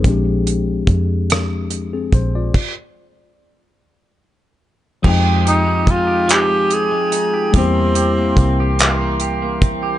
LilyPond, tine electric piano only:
\new Staff \with { instrumentName = "Tine electric piano" } { \time 6/8 \key f \minor \tempo 4. = 48 << { aes'16 r2 <c' aes'>16 c''16 <f' d''>16~ | <f' d''>16 r2 r8. | r2. | r2. | } \\ { <f aes c' d' g'>2. | r2. | <f aes c' ees' g''>2. | <g bes c' e' g'>2. | } >> }